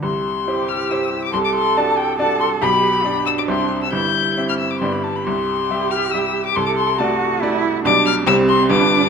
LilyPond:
<<
  \new Staff \with { instrumentName = "Violin" } { \time 3/4 \key c \major \tempo 4 = 139 c'''4. f'''8 e'''8. d'''16 | c'''16 d'''16 c'''8 a''8 g''8 a''8 c'''8 | b''4. e'''16 d'''16 c'''8. e'''16 | g'''4~ g'''16 f'''16 e'''16 d'''16 c'''16 b''16 a''16 b''16 |
c'''4. f'''8 e'''8. d'''16 | c'''16 d'''16 c'''8 a''4. r8 | d'''8 f'''8 e'''8 c'''8 d'''4 | }
  \new Staff \with { instrumentName = "Cello" } { \time 3/4 \key c \major r4 g'2 | a'2 a'4 | g'4 d'2 | e'2~ e'8 r8 |
g'2. | a'4 fis'4 e'4 | d'4 c'4 d'4 | }
  \new Staff \with { instrumentName = "Grand piano" } { \time 3/4 \key c \major <c, c>4 <e' g' c''>4 <e' g' c''>4 | <c, c>4 <d' fis' d''>4 <d' fis' d''>4 | <b,, b,>4 <d' g' d''>4 <c, c c' g' e''>4 | <g,, g,>4 <c' g' e''>4 <g,, g, b g' d''>4 |
<c, c>4 <g g' e''>4 <g g' e''>4 | <c, c>4 <a fis' d''>4 <a fis' d''>4 | <b,, b, g g' d''>4 <c, c g g' c''>4 <g,, g, g f' b'>4 | }
>>